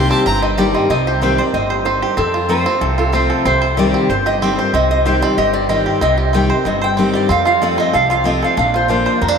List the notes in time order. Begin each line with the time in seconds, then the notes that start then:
Already playing: C3 D#3 G3 C4 G4 C6
0.11 C4 A5
0.26 G1 G2 G4 A#5
0.42 C4 D#5
0.58 D#3 G3 C4 G4 D5
0.74 C4 D#5
0.90 C2 C3 C4 D#5
1.07 G4 C5
1.22 D#3 G3 C4 G4 C5
1.38 C4 G4 C5 D5
1.54 G1 A2 C4 D#5
1.70 C5
1.85 G2 C4 C5
2.02 G4
2.17 F2 C4 A4
2.34 F4
2.49 F3 A3 C4 F4 A4 C5
2.65 C4 F4
2.81 C2 C3 A4
2.98 F4 A4
3.13 F3 A3 C4 F4 C5
3.30 A4
3.45 C2 C3 C4 C5
3.62 C5
3.77 D#3 G3 C4 G4 D5
3.94 G4
4.09 G1 G2 C5
4.26 G4 D#5
4.42 D#3 G3 C4 G4
4.58 C4 G4 C5
4.74 C2 C3 C4 D#5
4.91 D#5
5.05 D#3 G3 C4 G4 C5
5.22 C4 D5
5.37 G1 G2 G4 D#5
5.53 G4 D5
5.69 D#3 G3 C4 G4 D#5
5.86 G4
6.01 C2 C3 C4 D#5
6.18 G4
6.33 D#3 G3 C4 G4 G5
6.50 C4 G4 C5
6.65 G1 G2 C4 D#5
6.82 C5 G5
6.97 D#3 G3 C4 G4
7.14 G4 D5
7.29 F2 C4 F5
7.45 F4 F5
7.62 F3 A3 C4 F4 A4 D5
7.78 C4 D#5
7.93 C2 C3 A4 F5
8.10 F4 F5
8.24 F3 A3 C4 F4 D#5
8.43 A4 F5
8.57 A#1 A#2 D4 F5
8.74 F4 C5
8.88 F3 A#3 D4 F4 C5
9.06 C5
9.22 F2 C4 A#4
9.28 D4